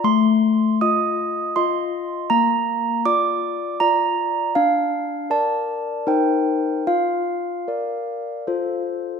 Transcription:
\new Staff \with { instrumentName = "Handbells" } { \time 3/4 \key bes \major \tempo 4 = 80 << { c'''4 ees'''4 c'''4 | bes''4 d'''4 bes''4 | f''4 a''4 g''4 | f''2~ f''8 r8 | } \\ { a4 <f' ees''>4 <f' ees''>4 | bes4 <f' d''>4 <f' d''>4 | d'4 <bes' d''>4 <ees' bes' c''>4 | f'4 <bes' d''>4 <f' a' c''>4 | } >> }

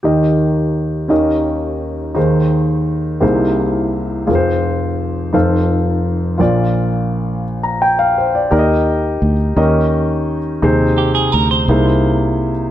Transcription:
<<
  \new Staff \with { instrumentName = "Clean electric guitar" } { \time 6/8 \key ees \major \tempo 4. = 57 r2. | r2. | r2. | r2. |
r2. | r8 g'16 aes'16 bes'16 c''8 r4 r16 | }
  \new Staff \with { instrumentName = "Grand piano" } { \time 6/8 \key ees \major << { r2. | r2. | r2. | r4. r16 bes''16 g''16 f''16 c''16 d''16~ |
d''16 r2 r8. | r2. | } \\ { <g' bes' ees''>4. <des' ees' g' bes' ees''>4. | <ees' aes' c''>4. <bes dis' e' gis' c''>4. | <f' aes' bes' c''>4. <ees' f' a' c'' f''>4. | <f' bes' d''>2. |
<g' bes' d'' ees''>4 r8 <des' ees' g' bes' ees''>4 r8 | <ees' aes' c''>4 r8 <bes dis' e' gis' c''>4 r8 | } >> }
  \new Staff \with { instrumentName = "Grand piano" } { \clef bass \time 6/8 \key ees \major <ees, ees>4. <ees, ees>4. | <ees, ees>4. <c, c>4. | <f,, f,>4. <f,, f,>4. | <bes,, bes,>2. |
ees'4. ees4. | c4. c4. | }
  \new Staff \with { instrumentName = "Fingered electric bass" } { \clef bass \time 6/8 \key ees \major r2. | r2. | r2. | r2. |
ees,4 d,8 ees,4. | ees,4 d,8 c,4. | }
>>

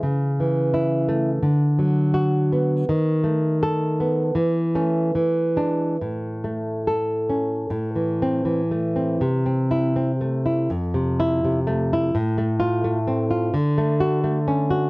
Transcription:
\new Staff \with { instrumentName = "Nylon-string guitar" } { \time 2/4 \key a \major \tempo 4 = 82 << { r4 e'4 | r4 fis'4 | r4 a'4 | r8 cis'8 r8 d'8 |
r4 a'4 | \key a \minor \tuplet 3/2 { r4 c'8 } r4 | \tuplet 3/2 { r4 e'8 } r4 | \tuplet 3/2 { r4 e'8 } r4 |
\tuplet 3/2 { r4 f'8 } r4 | \key d \lydian \tuplet 3/2 { r4 fis'8 } r4 | } \\ { cis8 e4 a8 | d8 fis4 b8 | dis8 a4 b8 | e8 a8 e8 gis8 |
a,8 a4 cis'8 | \tuplet 3/2 { a,8 e4 e8 a8 c'8 } | \tuplet 3/2 { c8 c'4 c'8 a8 e'8 } | \tuplet 3/2 { f,8 c4 c8 a8 e'8 } |
\tuplet 3/2 { a,8 a4 a8 c'8 f'8 } | \tuplet 3/2 { d8 a4 a8 cis'8 fis'8 } | } >> }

